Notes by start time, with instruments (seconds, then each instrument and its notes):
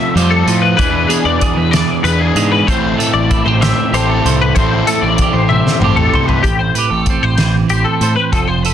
Already playing: overdriven electric guitar F3 A3 C4 F4, clean electric guitar F3 A3 A4 C5 E5
0.14 picked electric bass F2, overdriven electric guitar F3 A3, clean electric guitar G3 C5, closed hi-hat
0.18 overdriven electric guitar C4 F4
0.31 clean electric guitar A4
0.47 picked electric bass A2, clean electric guitar F3, closed hi-hat
0.62 clean electric guitar B4
0.77 picked electric bass E2, overdriven electric guitar E3 B3 D4, clean electric guitar E3 B4, kick, closed hi-hat
0.82 overdriven electric guitar G#4
1.08 clean electric guitar B3 G#4, closed hi-hat
1.25 picked electric bass E2, clean electric guitar D5
1.41 clean electric guitar G#4, kick, closed hi-hat
1.57 picked electric bass E2, clean electric guitar B4
1.71 clean electric guitar E3 D5, snare, closed hi-hat
2.04 picked electric bass E2, overdriven electric guitar E3 B3 D4, clean electric guitar B4, closed hi-hat
2.08 overdriven electric guitar G#4
2.20 clean electric guitar G#4
2.35 picked electric bass G#2, clean electric guitar G#3, closed hi-hat
2.52 clean electric guitar B4
2.67 picked electric bass A1, overdriven electric guitar A2 E3 A3 C4 E4 A4, clean electric guitar A2 C5, kick, closed hi-hat
2.98 clean electric guitar A3 A4, closed hi-hat
3.13 picked electric bass A1, clean electric guitar D5
3.31 clean electric guitar E4, kick, closed hi-hat
3.45 picked electric bass A1, clean electric guitar G4 C5
3.61 clean electric guitar C4 E5, snare, closed hi-hat
3.93 picked electric bass A1, overdriven electric guitar A2 E3 A3 C4 E4 A4, clean electric guitar G4 C5, closed hi-hat
4.10 clean electric guitar A4
4.25 picked electric bass C2, clean electric guitar C5, closed hi-hat
4.41 clean electric guitar B4
4.55 picked electric bass A1, overdriven electric guitar A2 E3 A3 C4 E4 A4, clean electric guitar A2 C5, kick, closed hi-hat
4.87 clean electric guitar A3 A4, closed hi-hat
5.02 picked electric bass A1, clean electric guitar D5
5.18 clean electric guitar G4, kick, closed hi-hat
5.33 picked electric bass A1, clean electric guitar C5
5.49 clean electric guitar C4 E5, high tom
5.67 snare
5.79 picked electric bass A1, overdriven electric guitar A2 E3 A3 C4, clean electric guitar C5, mid tom
5.84 overdriven electric guitar E4 A4, clean electric guitar G4
5.96 clean electric guitar A4, mid tom
6.13 picked electric bass C2, clean electric guitar C5, floor tom
6.28 clean electric guitar B4, floor tom
6.43 picked electric bass A1, clean electric guitar A2 G4, kick, closed hi-hat
6.59 clean electric guitar C5
6.75 clean electric guitar G4 B4, closed hi-hat
6.90 picked electric bass A1, clean electric guitar A4
7.06 clean electric guitar C4, kick, closed hi-hat
7.23 picked electric bass A1, clean electric guitar C5
7.38 clean electric guitar E3, snare, closed hi-hat
7.69 picked electric bass A1, clean electric guitar C4 G4, closed hi-hat
7.84 clean electric guitar A4
8.01 picked electric bass A2, clean electric guitar C5, closed hi-hat
8.16 clean electric guitar B4
8.32 picked electric bass F1, clean electric guitar F3 A4, kick, closed hi-hat
8.48 clean electric guitar C5
8.63 clean electric guitar A4 B4, closed hi-hat